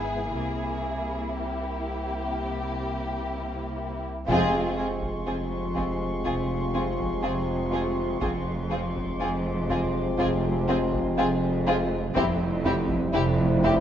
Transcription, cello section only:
0.00 0.31 G#2 medium
0.36 4.05 C3 soft
4.28 5.13 F2 medium
5.27 6.14 F2 medium
6.25 7.12 F2 soft
7.24 8.11 F2 soft
8.22 9.09 F2 medium
9.20 10.07 F2 medium
10.18 11.05 F2 medium
11.18 12.04 F2 medium
12.15 13.02 F2 medium
13.14 13.80 F2 medium

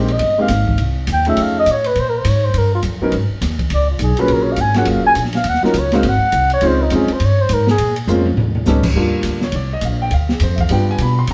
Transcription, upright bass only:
0.00 0.19 A#1 medium
0.20 0.48 G1 medium
0.49 0.78 G#1 medium
0.78 1.07 C2 medium
1.08 1.36 D#2 medium
1.37 1.66 F2 medium
1.66 1.95 A2 medium
1.96 2.24 A#2 medium
2.25 2.53 G#2 medium
2.54 2.82 G2 medium
2.83 3.00 F2 medium
3.01 muted upright bass stroke soft
3.12 3.29 G#2 medium
3.30 muted upright bass stroke soft
3.41 3.70 D#2 loud
3.70 3.99 C#2 medium
3.99 4.16 B1 medium
4.18 muted upright bass stroke soft
4.28 4.57 A#1 medium
4.57 4.86 G#1 medium
4.86 5.03 F#1 medium
5.05 muted upright bass stroke soft
5.16 5.44 A#1 medium
5.45 5.62 D#2 medium
5.63 muted upright bass stroke soft
5.74 6.03 C#2 loud
6.03 6.20 G#1 medium
6.22 muted upright bass stroke soft
6.33 6.61 C2 medium
6.62 6.90 C#2 loud
6.91 7.08 F2 medium
7.10 muted upright bass stroke soft
7.20 7.49 G2 medium
7.49 7.78 G#2 medium
7.78 8.07 A#2 medium
8.07 8.36 F2 loud
8.37 8.66 D#2 medium
8.66 8.94 C#2 medium
8.94 9.23 D#2 medium
9.23 9.52 D2 medium
9.53 9.81 C2 medium
9.81 10.10 A#1 loud
10.11 10.40 D2 medium
10.40 10.69 F2 medium
10.69 10.98 G2 medium
10.98 11.27 B2 medium
11.28 11.34 C3 medium

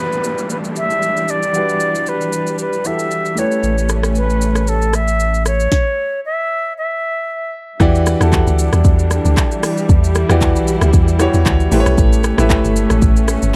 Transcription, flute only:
0.00 0.51 B4 medium
0.52 0.58 B4 medium
0.78 1.32 E5 loud
1.30 2.10 D5 loud
2.09 2.60 B4 medium
2.61 2.88 B4 medium
2.86 3.40 E5 loud
3.39 3.89 C#5 medium
4.17 4.70 B4 medium
4.69 4.96 A4 medium
4.95 5.46 E5 loud
5.47 6.20 C#5 loud
6.26 6.73 E5 loud
6.78 7.51 E5 medium

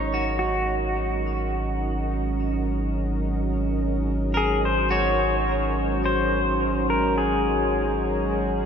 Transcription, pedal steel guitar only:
0.00 0.42 C#5 medium
0.39 2.05 F#4 medium
4.37 4.65 G#4 medium
4.65 4.91 C5 medium
4.92 6.05 C#5 loud
6.05 6.93 C5 medium
6.90 7.19 A#4 medium
7.18 8.66 G#4 medium

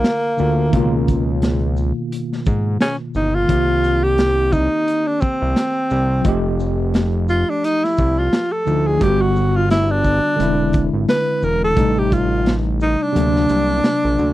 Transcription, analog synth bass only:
0.40 0.70 D2 loud
0.73 1.93 C#2 loud
2.47 2.78 G#2 medium
3.15 3.46 G1 medium
3.49 4.69 C2 loud
5.42 5.55 C2 medium
5.91 6.22 C2 medium
6.25 7.44 F1 loud
7.99 8.29 C2 medium
8.67 8.98 D2 medium
9.01 10.20 G1 loud
10.40 10.90 E1 loud
10.93 11.07 G#1 medium
11.43 11.74 E1 medium
11.77 12.96 A1 loud
13.16 13.46 D2 loud
13.50 13.81 C2 medium
14.04 14.17 A#1 medium
14.19 14.33 D2 medium

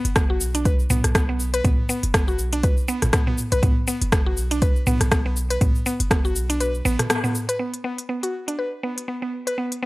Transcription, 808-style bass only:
0.05 0.42 F#1 medium
0.41 0.87 B1 medium
0.90 1.01 B1 medium
1.04 1.61 B1 loud
1.64 1.76 B1 loud
2.03 2.40 F#1 medium
2.39 2.85 B1 medium
3.02 3.11 A1 medium
3.52 3.61 B1 medium
3.63 3.74 B1 loud
4.02 4.39 F#1 medium
4.37 4.83 B1 medium
4.87 4.98 B1 medium
5.01 5.58 B1 loud
5.61 5.72 B1 loud
6.00 6.37 F#1 medium
6.36 6.82 B1 medium
6.85 6.96 A1 medium

